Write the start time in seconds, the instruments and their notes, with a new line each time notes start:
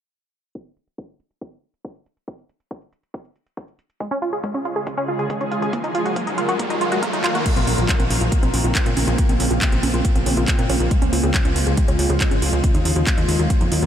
0.55 kick
0.77 closed hi-hat
0.88 closed hi-hat
0.98 kick, closed hi-hat
1.20 closed hi-hat
1.31 closed hi-hat
1.41 kick, closed hi-hat
1.52 closed hi-hat
1.74 closed hi-hat
1.85 kick, closed hi-hat
1.95 closed hi-hat
2.06 closed hi-hat
2.17 closed hi-hat
2.28 kick, closed hi-hat
2.39 closed hi-hat
2.49 closed hi-hat
2.60 closed hi-hat
2.71 kick, closed hi-hat
2.82 closed hi-hat
2.93 closed hi-hat
3.03 closed hi-hat
3.14 kick, closed hi-hat
3.25 closed hi-hat
3.36 closed hi-hat
3.46 closed hi-hat
3.57 kick, closed hi-hat
3.68 closed hi-hat
3.79 closed hi-hat
3.90 closed hi-hat
4.00 ambient pad C#3 G#3 F4 G#4, synth arpeggio sound G#3, kick, closed hi-hat, riser
4.11 synth arpeggio sound C#4, closed hi-hat
4.22 synth arpeggio sound F4, closed hi-hat
4.33 synth arpeggio sound G#4, closed hi-hat
4.44 synth arpeggio sound G#3, kick, closed hi-hat
4.54 synth arpeggio sound C#4, closed hi-hat
4.65 synth arpeggio sound F4, closed hi-hat
4.76 synth arpeggio sound G#4, closed hi-hat
4.87 synth arpeggio sound G#3, kick, closed hi-hat
4.97 synth arpeggio sound C#4, closed hi-hat
5.08 synth arpeggio sound F4
5.19 synth arpeggio sound G#4, closed hi-hat
5.30 synth arpeggio sound G#3, kick, closed hi-hat
5.41 synth arpeggio sound C#4, closed hi-hat
5.51 synth arpeggio sound F4, closed hi-hat
5.62 synth arpeggio sound G#4, closed hi-hat
5.73 ambient pad D#3 F#3 A#4, synth arpeggio sound A#3, kick, closed hi-hat
5.84 synth arpeggio sound D#4, closed hi-hat
5.95 synth arpeggio sound F4, closed hi-hat
6.05 synth arpeggio sound F#4, closed hi-hat
6.16 synth arpeggio sound A#3, kick, closed hi-hat
6.27 synth arpeggio sound D#4, closed hi-hat
6.38 synth arpeggio sound F4, closed hi-hat
6.49 synth arpeggio sound F#4, closed hi-hat
6.59 synth arpeggio sound A#3, kick, closed hi-hat
6.70 synth arpeggio sound D#4, closed hi-hat
6.81 synth arpeggio sound F4, closed hi-hat
6.92 synth arpeggio sound F#4, closed hi-hat
7.03 synth arpeggio sound A#3, kick, closed hi-hat
7.13 synth arpeggio sound D#4, closed hi-hat
7.24 synth arpeggio sound F4, clap, closed hi-hat
7.35 synth arpeggio sound F#4, closed hi-hat
7.46 ambient pad C#3 A#3 C4 F4, synth arpeggio sound A#3, kick, closed hi-hat, crash
7.56 analog synth bass A#1, synth arpeggio sound C4, closed hi-hat
7.67 analog synth bass A#1, synth arpeggio sound C#4, open hi-hat
7.78 analog synth bass A#1, synth arpeggio sound F4, closed hi-hat
7.89 synth arpeggio sound A#3, kick, clap, closed hi-hat
8.00 analog synth bass A#1, synth arpeggio sound C4, closed hi-hat
8.10 analog synth bass A#1, synth arpeggio sound C#4, open hi-hat
8.21 analog synth bass A#1, synth arpeggio sound F4, closed hi-hat
8.32 synth arpeggio sound A#3, kick, closed hi-hat
8.43 analog synth bass A#1, synth arpeggio sound C4, closed hi-hat
8.54 analog synth bass A#1, synth arpeggio sound C#4, open hi-hat
8.64 analog synth bass A#1, synth arpeggio sound F4, closed hi-hat
8.75 synth arpeggio sound A#3, kick, clap, closed hi-hat
8.86 analog synth bass A#2, synth arpeggio sound C4, closed hi-hat
8.97 analog synth bass A#1, synth arpeggio sound C#4, open hi-hat
9.08 analog synth bass A#1, synth arpeggio sound F4, closed hi-hat
9.18 synth arpeggio sound A#3, kick, closed hi-hat
9.29 analog synth bass A#1, synth arpeggio sound C4, closed hi-hat
9.40 analog synth bass A#1, synth arpeggio sound C#4, open hi-hat
9.51 analog synth bass A#1, synth arpeggio sound F4, closed hi-hat
9.62 synth arpeggio sound A#3, kick, clap, closed hi-hat
9.72 analog synth bass A#1, synth arpeggio sound C4, closed hi-hat
9.83 analog synth bass A#1, synth arpeggio sound C#4, open hi-hat
9.94 analog synth bass A#1, synth arpeggio sound F4, closed hi-hat
10.05 synth arpeggio sound A#3, kick, closed hi-hat
10.15 analog synth bass A#1, synth arpeggio sound C4, closed hi-hat
10.26 analog synth bass A#1, synth arpeggio sound C#4, open hi-hat
10.37 analog synth bass A#1, synth arpeggio sound F4, closed hi-hat
10.48 synth arpeggio sound A#3, kick, clap, closed hi-hat
10.59 analog synth bass A#2, synth arpeggio sound C4, closed hi-hat
10.69 analog synth bass A#1, synth arpeggio sound C#4, open hi-hat
10.80 analog synth bass A#1, synth arpeggio sound F4, closed hi-hat
10.91 ambient pad F3 G#3, synth arpeggio sound G#3, kick, closed hi-hat
11.02 analog synth bass C#2, synth arpeggio sound C#4, closed hi-hat
11.13 analog synth bass C#2, synth arpeggio sound F4, open hi-hat
11.23 analog synth bass C#2, synth arpeggio sound G#4, closed hi-hat
11.34 synth arpeggio sound G#3, kick, clap, closed hi-hat
11.45 analog synth bass C#2, synth arpeggio sound C#4, closed hi-hat
11.56 analog synth bass C#2, synth arpeggio sound F4, open hi-hat
11.67 analog synth bass C#2, synth arpeggio sound G#4, closed hi-hat
11.77 synth arpeggio sound G#3, kick, closed hi-hat
11.88 analog synth bass C#2, synth arpeggio sound C#4, closed hi-hat
11.99 analog synth bass C#2, synth arpeggio sound F4, open hi-hat
12.10 analog synth bass C#2, synth arpeggio sound G#4, closed hi-hat
12.21 synth arpeggio sound G#3, kick, clap, closed hi-hat
12.31 analog synth bass G#1, synth arpeggio sound C#4, closed hi-hat
12.42 analog synth bass C#2, synth arpeggio sound F4, open hi-hat
12.53 analog synth bass C#2, synth arpeggio sound G#4, closed hi-hat
12.64 ambient pad D#3 F#3 A#3, synth arpeggio sound A#3, kick, closed hi-hat
12.75 analog synth bass D#2, synth arpeggio sound D#4, closed hi-hat
12.85 analog synth bass D#2, synth arpeggio sound F4, open hi-hat
12.96 analog synth bass D#2, synth arpeggio sound F#4, closed hi-hat
13.07 synth arpeggio sound A#3, kick, clap, closed hi-hat
13.18 analog synth bass D#2, synth arpeggio sound D#4, closed hi-hat
13.28 analog synth bass D#2, synth arpeggio sound F4, open hi-hat
13.39 analog synth bass D#2, synth arpeggio sound F#4, closed hi-hat
13.50 synth arpeggio sound A#3, kick, closed hi-hat
13.61 analog synth bass F2, synth arpeggio sound D#4, closed hi-hat
13.72 analog synth bass D#2, synth arpeggio sound F4, open hi-hat
13.82 analog synth bass D#2, synth arpeggio sound F#4, closed hi-hat